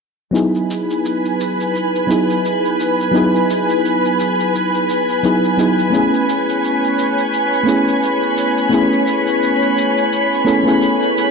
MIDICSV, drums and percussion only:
0, 0, Header, 1, 2, 480
1, 0, Start_track
1, 0, Key_signature, 4, "major"
1, 0, Tempo, 697674
1, 241, Time_signature, 4, 2, 24, 8
1, 7781, End_track
2, 0, Start_track
2, 0, Title_t, "Drums"
2, 244, Note_on_c, 9, 82, 40
2, 313, Note_off_c, 9, 82, 0
2, 379, Note_on_c, 9, 82, 17
2, 447, Note_off_c, 9, 82, 0
2, 485, Note_on_c, 9, 82, 65
2, 554, Note_off_c, 9, 82, 0
2, 621, Note_on_c, 9, 82, 29
2, 690, Note_off_c, 9, 82, 0
2, 724, Note_on_c, 9, 82, 38
2, 793, Note_off_c, 9, 82, 0
2, 861, Note_on_c, 9, 82, 18
2, 930, Note_off_c, 9, 82, 0
2, 966, Note_on_c, 9, 82, 64
2, 1034, Note_off_c, 9, 82, 0
2, 1105, Note_on_c, 9, 82, 28
2, 1174, Note_off_c, 9, 82, 0
2, 1207, Note_on_c, 9, 82, 39
2, 1276, Note_off_c, 9, 82, 0
2, 1344, Note_on_c, 9, 82, 20
2, 1413, Note_off_c, 9, 82, 0
2, 1446, Note_on_c, 9, 82, 67
2, 1514, Note_off_c, 9, 82, 0
2, 1584, Note_on_c, 9, 82, 28
2, 1653, Note_off_c, 9, 82, 0
2, 1688, Note_on_c, 9, 82, 38
2, 1757, Note_off_c, 9, 82, 0
2, 1824, Note_on_c, 9, 82, 19
2, 1893, Note_off_c, 9, 82, 0
2, 1926, Note_on_c, 9, 82, 61
2, 1995, Note_off_c, 9, 82, 0
2, 2068, Note_on_c, 9, 82, 28
2, 2137, Note_off_c, 9, 82, 0
2, 2169, Note_on_c, 9, 82, 41
2, 2238, Note_off_c, 9, 82, 0
2, 2306, Note_on_c, 9, 82, 18
2, 2375, Note_off_c, 9, 82, 0
2, 2409, Note_on_c, 9, 82, 66
2, 2478, Note_off_c, 9, 82, 0
2, 2544, Note_on_c, 9, 82, 31
2, 2612, Note_off_c, 9, 82, 0
2, 2650, Note_on_c, 9, 82, 40
2, 2719, Note_off_c, 9, 82, 0
2, 2787, Note_on_c, 9, 82, 21
2, 2855, Note_off_c, 9, 82, 0
2, 2889, Note_on_c, 9, 82, 67
2, 2957, Note_off_c, 9, 82, 0
2, 3027, Note_on_c, 9, 82, 29
2, 3096, Note_off_c, 9, 82, 0
2, 3131, Note_on_c, 9, 82, 39
2, 3199, Note_off_c, 9, 82, 0
2, 3266, Note_on_c, 9, 82, 21
2, 3334, Note_off_c, 9, 82, 0
2, 3367, Note_on_c, 9, 82, 71
2, 3436, Note_off_c, 9, 82, 0
2, 3502, Note_on_c, 9, 82, 30
2, 3571, Note_off_c, 9, 82, 0
2, 3606, Note_on_c, 9, 82, 39
2, 3675, Note_off_c, 9, 82, 0
2, 3745, Note_on_c, 9, 82, 21
2, 3814, Note_off_c, 9, 82, 0
2, 3846, Note_on_c, 9, 82, 70
2, 3915, Note_off_c, 9, 82, 0
2, 3984, Note_on_c, 9, 82, 30
2, 4053, Note_off_c, 9, 82, 0
2, 4086, Note_on_c, 9, 82, 41
2, 4155, Note_off_c, 9, 82, 0
2, 4226, Note_on_c, 9, 82, 20
2, 4295, Note_off_c, 9, 82, 0
2, 4329, Note_on_c, 9, 82, 76
2, 4398, Note_off_c, 9, 82, 0
2, 4467, Note_on_c, 9, 82, 31
2, 4536, Note_off_c, 9, 82, 0
2, 4570, Note_on_c, 9, 82, 40
2, 4639, Note_off_c, 9, 82, 0
2, 4707, Note_on_c, 9, 82, 19
2, 4776, Note_off_c, 9, 82, 0
2, 4807, Note_on_c, 9, 82, 68
2, 4876, Note_off_c, 9, 82, 0
2, 4943, Note_on_c, 9, 82, 31
2, 5012, Note_off_c, 9, 82, 0
2, 5044, Note_on_c, 9, 82, 43
2, 5113, Note_off_c, 9, 82, 0
2, 5183, Note_on_c, 9, 82, 21
2, 5252, Note_off_c, 9, 82, 0
2, 5284, Note_on_c, 9, 82, 76
2, 5353, Note_off_c, 9, 82, 0
2, 5424, Note_on_c, 9, 82, 31
2, 5492, Note_off_c, 9, 82, 0
2, 5525, Note_on_c, 9, 82, 38
2, 5594, Note_off_c, 9, 82, 0
2, 5660, Note_on_c, 9, 82, 21
2, 5729, Note_off_c, 9, 82, 0
2, 5762, Note_on_c, 9, 82, 75
2, 5830, Note_off_c, 9, 82, 0
2, 5901, Note_on_c, 9, 82, 31
2, 5970, Note_off_c, 9, 82, 0
2, 6004, Note_on_c, 9, 82, 40
2, 6073, Note_off_c, 9, 82, 0
2, 6140, Note_on_c, 9, 82, 20
2, 6209, Note_off_c, 9, 82, 0
2, 6242, Note_on_c, 9, 82, 72
2, 6311, Note_off_c, 9, 82, 0
2, 6379, Note_on_c, 9, 82, 33
2, 6448, Note_off_c, 9, 82, 0
2, 6487, Note_on_c, 9, 82, 43
2, 6555, Note_off_c, 9, 82, 0
2, 6622, Note_on_c, 9, 82, 19
2, 6690, Note_off_c, 9, 82, 0
2, 6728, Note_on_c, 9, 82, 67
2, 6797, Note_off_c, 9, 82, 0
2, 6863, Note_on_c, 9, 82, 30
2, 6931, Note_off_c, 9, 82, 0
2, 6965, Note_on_c, 9, 82, 41
2, 7034, Note_off_c, 9, 82, 0
2, 7107, Note_on_c, 9, 82, 22
2, 7176, Note_off_c, 9, 82, 0
2, 7209, Note_on_c, 9, 82, 67
2, 7277, Note_off_c, 9, 82, 0
2, 7347, Note_on_c, 9, 82, 31
2, 7416, Note_off_c, 9, 82, 0
2, 7447, Note_on_c, 9, 82, 42
2, 7516, Note_off_c, 9, 82, 0
2, 7583, Note_on_c, 9, 82, 21
2, 7652, Note_off_c, 9, 82, 0
2, 7690, Note_on_c, 9, 82, 70
2, 7758, Note_off_c, 9, 82, 0
2, 7781, End_track
0, 0, End_of_file